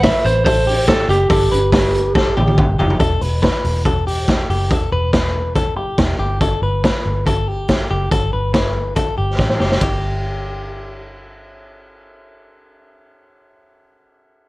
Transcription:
0.03 clean electric guitar B4, lead electric guitar E5, kick, snare, hi-hat pedal, open hi-hat
0.24 fingered electric bass A1, lead electric guitar C5, hi-hat pedal, open hi-hat
0.45 clean electric guitar A4, lead electric guitar C5, kick, hi-hat pedal, open hi-hat
0.67 clean electric guitar G4, hi-hat pedal, open hi-hat
0.88 lead electric guitar A4, kick, snare, hi-hat pedal, open hi-hat
1.08 fingered electric bass F#1, clean electric guitar G4, lead electric guitar G4, hi-hat pedal, open hi-hat
1.30 fingered electric bass G1, clean electric guitar A4, kick, hi-hat pedal, open hi-hat
1.51 fingered electric bass G1, clean electric guitar B4, hi-hat pedal, open hi-hat
1.73 clean electric guitar B4, kick, snare, hi-hat pedal, open hi-hat
1.94 hi-hat pedal, open hi-hat
2.15 clean electric guitar A4, kick, snare
2.37 fingered electric bass A1, clean electric guitar G4, high tom
2.47 high tom
2.58 fingered electric bass G1, kick, mid tom
2.79 fingered electric bass F#1, clean electric guitar G4, floor tom
2.90 floor tom
3.00 fingered electric bass E1, clean electric guitar A4, kick, closed hi-hat
3.21 fingered electric bass E1, clean electric guitar B4, open hi-hat
3.42 clean electric guitar B4, kick, snare, closed hi-hat
3.64 fingered electric bass E1, open hi-hat
3.85 clean electric guitar A4, kick, closed hi-hat
4.07 clean electric guitar G4, open hi-hat
4.28 kick, snare, closed hi-hat
4.49 fingered electric bass F#1, clean electric guitar G4, open hi-hat
4.70 fingered electric bass E1, clean electric guitar A4, kick, closed hi-hat
4.92 fingered electric bass E1, clean electric guitar B4
5.13 clean electric guitar B4, kick, snare, closed hi-hat
5.56 clean electric guitar A4, kick, closed hi-hat
5.76 fingered electric bass F#1, clean electric guitar G4
5.98 fingered electric bass E1, kick, snare, closed hi-hat
6.19 fingered electric bass G1, clean electric guitar G4
6.41 clean electric guitar A4, kick, closed hi-hat
6.62 fingered electric bass G1, clean electric guitar B4
6.84 clean electric guitar B4, kick, snare, closed hi-hat
7.05 fingered electric bass G1
7.27 clean electric guitar A4, kick, closed hi-hat
7.48 clean electric guitar G4
7.68 kick, snare, closed hi-hat
7.91 fingered electric bass F#1, clean electric guitar G4
8.11 fingered electric bass G1, clean electric guitar A4, kick, closed hi-hat
8.33 fingered electric bass G1, clean electric guitar B4
8.54 clean electric guitar B4, kick, snare, closed hi-hat
8.96 clean electric guitar A4, kick, closed hi-hat
9.18 fingered electric bass G1, clean electric guitar G4
9.39 fingered electric bass A1, kick, snare
9.49 snare
9.60 fingered electric bass F#1, clean electric guitar G4, snare
9.71 snare
9.81 fingered electric bass G1, clean electric guitar G4, kick, ride

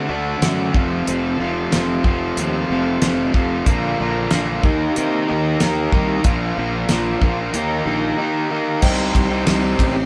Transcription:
Already playing: tonewheel organ A3 D4 F#4 A4, overdriven electric guitar D4
0.08 fingered electric bass D2, overdriven electric guitar D3 A3 D4 F#4
0.42 fingered electric bass F#2, overdriven electric guitar D3 A3 D4 F#4, snare, closed hi-hat
0.73 fingered electric bass F1, overdriven electric guitar F2 C3 F3 A3 C4 F4, tonewheel organ A3 C4 F4 A4, kick
1.07 fingered electric bass F1, overdriven electric guitar F2 C3 F3 A3 C4 F4, closed hi-hat
1.38 fingered electric bass F1, overdriven electric guitar F2 C3 F3 A3 C4 F4
1.72 fingered electric bass F1, overdriven electric guitar F2 C3 F3 A3 C4 F4, snare, closed hi-hat
2.04 fingered electric bass F1, overdriven electric guitar F2 C3 F3 A3 C4 F4, kick
2.37 fingered electric bass D#2, overdriven electric guitar F2 C3 F3 A3 C4 F4, closed hi-hat
2.70 fingered electric bass F1, overdriven electric guitar F2 C3 F3 A3 C4 F4
3.01 fingered electric bass F1, overdriven electric guitar F2 C3 F3 A3 C4 F4, snare, closed hi-hat
3.33 fingered electric bass F1, overdriven electric guitar F2 C3 F3 A3 C4 F4, kick
3.64 fingered electric bass A#1, overdriven electric guitar A#2 D3 F3 A#3 D4 F4, tonewheel organ C4 D4 F4 A#4, kick, closed hi-hat
3.99 fingered electric bass A#1, overdriven electric guitar A#2 D3 F3 A#3 D4 F4
4.31 fingered electric bass A#1, overdriven electric guitar A#2 D3 F3 A#3 D4 F4, snare, closed hi-hat
4.63 fingered electric bass D#2, overdriven electric guitar D#3 A#3 D#4 G4, tonewheel organ A#3 D#4 G4 A#4, kick
4.96 fingered electric bass C3, overdriven electric guitar D#3 A#3 D#4 G4, closed hi-hat
5.28 fingered electric bass D#2, overdriven electric guitar D#3 A#3 D#4 G4
5.60 fingered electric bass D#2, overdriven electric guitar D#3 A#3 D#4 G4, snare, closed hi-hat
5.92 fingered electric bass C2, overdriven electric guitar D#3 A#3 D#4 G4, kick
6.23 fingered electric bass A#1, overdriven electric guitar A#2 F3 A#3 D4 F4, tonewheel organ C4 D4 F4 A#4, kick, closed hi-hat
6.58 fingered electric bass A#1, overdriven electric guitar A#2 F3 A#3 D4 F4
6.88 fingered electric bass A#1, overdriven electric guitar A#2 F3 A#3 D4 F4, snare, closed hi-hat
7.22 fingered electric bass A#1, overdriven electric guitar A#2 F3 A#3 D4 F4, kick
7.52 fingered electric bass D#2, overdriven electric guitar D#3 A#3 D#4 G4, tonewheel organ A#3 D#4 G4 A#4, closed hi-hat
7.86 fingered electric bass A#1, overdriven electric guitar D#3 A#3 D#4 G4
8.18 overdriven electric guitar D#3 A#3 D#4 G4
8.50 overdriven electric guitar D#3 A#3 D#4 G4
8.82 fingered electric bass C2, overdriven electric guitar C3 G3 C4 D#4 G4, tonewheel organ C4 D#4 G4, upright piano C5 D#5 G5, kick, crash
8.86 overdriven electric guitar D#4, tonewheel organ C5
9.15 fingered electric bass C2, kick, ride
9.30 overdriven electric guitar C4 D#4 G4
9.35 overdriven electric guitar G3
9.47 fingered electric bass C2, overdriven electric guitar C3 G3 C4 D#4 G4, snare, ride
9.64 overdriven electric guitar C4 D#4 G4
9.79 fingered electric bass A1, overdriven electric guitar C3 G3 C4 D#4, kick, ride
9.95 muted overdriven electric guitar stroke

